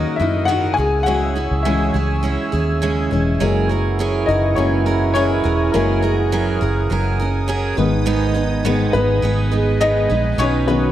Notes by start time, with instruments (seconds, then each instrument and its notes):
Already playing: upright piano D#3 F#3 A#3 C#4 D#4 E4 C#5 D#5 E5, steel-string acoustic guitar F#3 D#4 F#4 A#4, analog synth pad A#4 D#5 F#5 D#6
0.16 fingered electric bass F#2, steel-string acoustic guitar A#4, upright piano E5
0.21 steel-string acoustic guitar D#4 F#4, upright piano E4
0.45 steel-string acoustic guitar D#3 F#3 D#4 F#4 A#4, upright piano F#5
0.50 upright piano F#4
0.74 steel-string acoustic guitar G#4, analog synth pad E5 E6, upright piano G#5
0.78 fingered electric bass C#2, steel-string acoustic guitar C#4 E4, upright piano G#4, analog synth pad C#5 G#5
1.03 steel-string acoustic guitar C#3 G#3 C#4, upright piano F#5
1.07 steel-string acoustic guitar E4 G#4, upright piano F#4
1.35 steel-string acoustic guitar C#4 E4 G#4
1.51 fingered electric bass C#2
1.63 steel-string acoustic guitar C#3 G#3 C#4 E4 G#4, upright piano E3 G#3 C#4 E5
1.67 upright piano E4
1.94 fingered electric bass C#2, steel-string acoustic guitar C#4 E4 G#4
2.23 steel-string acoustic guitar G#3 C#4 E4 G#4
2.52 fingered electric bass D#2, steel-string acoustic guitar C#4 E4 G#4
2.82 steel-string acoustic guitar C#3 G#3 C#4 E4 G#4
3.11 fingered electric bass E1, upright piano E3 G#3 C#4, steel-string acoustic guitar C#4 E4 G#4
3.40 fingered electric bass F#1, french horn section E3 E4, upright piano F#3 G#3 A#3, steel-string acoustic guitar F#3 C#4 G#4 A#4, analog synth pad A#4 F#5 G#5 C#6
3.69 steel-string acoustic guitar C#4 G#4 A#4
3.99 steel-string acoustic guitar F#3 C#4 G#4 A#4
4.26 fingered electric bass F#1, upright piano D#4 D#5, steel-string acoustic guitar G#4 A#4
4.31 steel-string acoustic guitar C#4
4.55 fingered electric bass F#1, steel-string acoustic guitar F#3 C#4 G#4 A#4, upright piano F#3 G#3 A#3 C#4 C#5
4.86 steel-string acoustic guitar C#4 G#4 A#4
5.14 steel-string acoustic guitar F#3 C#4 G#4 A#4, upright piano C#4 C#5
5.44 fingered electric bass E1, steel-string acoustic guitar C#4 G#4 A#4
5.72 fingered electric bass F#1, upright piano F#3 G#3 A#3 A#4, steel-string acoustic guitar F#3 C#4 G#4 A#4, analog synth pad D#6
6.02 steel-string acoustic guitar C#4 G#4 A#4
6.32 steel-string acoustic guitar F#3 C#4 G#4 A#4
6.61 fingered electric bass F#1, steel-string acoustic guitar C#4 G#4 A#4
6.90 fingered electric bass F#1, steel-string acoustic guitar F#3 C#4 G#4 A#4
7.19 steel-string acoustic guitar C#4 G#4 A#4
7.48 steel-string acoustic guitar F#3 C#4 G#4 A#4
7.77 fingered electric bass G#1, upright piano D#3 G#3 B3, french horn section D#3 D#4, steel-string acoustic guitar G#3 B3 D#4 B4, analog synth pad B4 D#5 G#5
8.06 steel-string acoustic guitar G#2 D#3 G#3 B3 D#4 B4
8.34 steel-string acoustic guitar G#3 B3 D#4 B4
8.65 steel-string acoustic guitar G#2 D#3 G#3 B3 D#4 B4, upright piano D#3 G#3 B3
8.93 fingered electric bass G#1, steel-string acoustic guitar G#3 B3 D#4 B4, upright piano B3 B4
9.22 fingered electric bass G#1, steel-string acoustic guitar G#3 B3 D#4 B4
9.52 french horn section G#3 G#4, steel-string acoustic guitar G#3 B3 D#4 B4
9.81 steel-string acoustic guitar G#2 D#3 G#3 B3 D#4 B4, upright piano D#4 D#5
10.10 fingered electric bass A#1, steel-string acoustic guitar G#3 B3 D#4 B4
10.38 fingered electric bass B1, steel-string acoustic guitar B2 D#3 F#3 C#4 D#4 B4, french horn section F#3 F#4, upright piano C#4 C#5, analog synth pad F#5 C#6
10.68 upright piano D#3 B3 C#4 B4, steel-string acoustic guitar F#3 C#4 D#4 B4